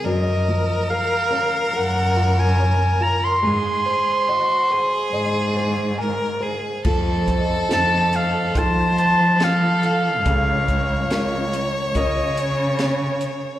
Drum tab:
CC |--------|--------|x-------|--------|
HH |--------|--------|-xxxxxxx|xxxxxxxx|
SD |--------|--------|--o---o-|--o---o-|
BD |--------|--------|oo--o---|oo--o---|